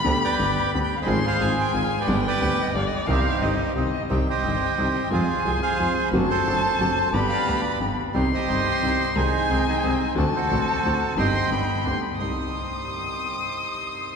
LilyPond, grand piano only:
\new Staff \with { instrumentName = "Grand piano" } { \clef bass \time 3/4 \key c \minor \tempo 4 = 178 <d, d g b g'>8 r8 <g,, g, d g b g'>8 r8 <d, d g b g'>8 r8 | <aes,, aes, f aes c' aes'>8 r8 <aes,, aes, f aes c' aes'>8 r8 <aes,, aes, f aes c' aes'>8 r8 | <g,, g, d g b g'>8 r8 <d, d g b g'>8 r8 <g,, g, d g b g'>8 r8 | <c, c ees g c' g'>8 r8 <g,, g, ees g c' g'>8 r8 <c, c ees g c' g'>8 r8 |
<c, c ees g c' g'>8 r8 <g,, g, ees g c' g'>8 r8 <c, c ees g c' g'>8 r8 | <f, f aes c' aes'>8 r8 <c, c f aes c' aes'>8 r8 <f, f aes c' aes'>8 r8 | <fis, d fis a c' fis'>8 r8 <fis, d fis a c' fis'>8 r8 <fis, d fis a c' fis'>8 r8 | <g,, g, d g b g'>8 r8 <d, d g b g'>8 r8 <g,, g, d g b g'>8 r8 |
<c, c ees g c' g'>8 r8 <g,, g, ees g c' g'>8 r8 <c, c ees g c' g'>8 r8 | <c, c ees aes c' aes'>8 r8 <c, c ees aes c' aes'>8 r8 <c, c ees aes c' aes'>8 r8 | <d, d a c' fis'>8 r8 <a,, a, d a c' fis'>8 r8 <d, d a c' fis'>8 r8 | <g,, g, ees g c' g'>8 r8 <g,, g, d g b g'>8 r8 <d, d g b g'>8 r8 |
<c, c' ees' g'>2.~ | <c, c' ees' g'>2. | }